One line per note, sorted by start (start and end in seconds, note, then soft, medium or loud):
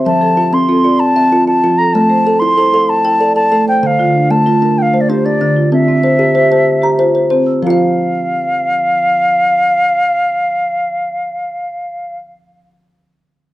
0.05 0.37 F3 medium
0.05 0.37 E5 medium
0.05 0.55 A5 loud
0.21 0.52 F3 medium
0.21 0.68 A4 medium
0.37 0.67 F4 medium
0.37 0.84 F4 medium
0.53 0.84 C4 medium
0.53 1.01 C6 medium
0.69 1.00 C4 medium
0.69 0.83 F4 medium
0.69 1.16 A4 medium
0.84 1.16 F4 medium
0.84 1.31 D5 medium
1.00 1.47 A5 loud
1.16 1.47 C4 medium
1.16 1.63 E5 medium
1.32 1.46 F4 medium
1.47 1.62 F4 medium
1.47 1.79 A5 loud
1.63 1.94 F3 medium
1.63 1.95 F4 medium
1.78 1.93 A4 medium
1.78 1.94 A#5 loud
1.93 2.26 A3 medium
1.93 2.25 A4 medium
1.93 2.41 A5 loud
2.09 2.41 A3 medium
2.09 2.56 C5 medium
2.26 2.73 A4 medium
2.26 2.56 A4 medium
2.39 2.73 E4 medium
2.39 2.91 C6 medium
2.57 2.89 E4 medium
2.57 2.72 A4 medium
2.57 3.04 C5 medium
2.73 3.05 A4 medium
2.73 3.20 F5 medium
2.89 3.35 A5 loud
3.04 3.36 E4 medium
3.04 3.52 G5 medium
3.20 3.35 A4 medium
3.20 3.67 D5 medium
3.36 3.50 A4 medium
3.36 3.65 A5 loud
3.52 3.83 A3 medium
3.52 3.83 A4 medium
3.68 3.82 C5 medium
3.68 3.83 G5 medium
3.83 4.15 D3 medium
3.83 4.15 C5 medium
3.83 4.32 F5 medium
3.83 3.87 G5 medium
3.99 4.31 D3 medium
3.99 4.45 F4 medium
4.15 4.62 D4 medium
4.31 4.62 A3 medium
4.31 4.80 A5 medium
4.46 4.78 A3 medium
4.46 4.61 D4 medium
4.46 4.93 F4 medium
4.62 4.94 D4 medium
4.62 5.09 A#4 medium
4.78 5.02 F5 medium
4.78 4.83 G5 medium
4.93 5.25 A3 medium
4.93 5.41 C5 medium
5.01 5.11 D5 medium
5.09 5.25 D4 medium
5.09 5.57 G4 medium
5.09 5.27 C5 medium
5.25 5.40 D4 medium
5.25 5.73 D5 medium
5.41 5.73 D3 medium
5.41 5.73 D4 medium
5.57 5.71 F4 medium
5.72 6.04 C4 medium
5.72 6.04 F4 medium
5.72 7.27 E5 medium
5.88 6.20 C4 medium
5.88 6.34 E5 medium
6.04 6.34 C5 medium
6.04 6.51 C5 medium
6.19 6.51 G4 medium
6.35 6.67 G4 medium
6.35 6.51 C5 medium
6.35 6.83 E5 medium
6.51 6.83 C5 medium
6.51 6.99 A5 medium
6.82 7.14 G4 medium
6.82 7.31 A#5 medium
6.99 7.47 F4 medium
6.99 7.14 C5 medium
7.15 7.29 C5 medium
7.30 7.62 C4 medium
7.30 7.62 C5 medium
7.46 7.94 E6 medium
7.62 12.21 F3 medium
7.62 7.94 C5 medium
7.62 12.18 F5 medium
7.66 12.25 F4 medium
7.66 12.29 F5 medium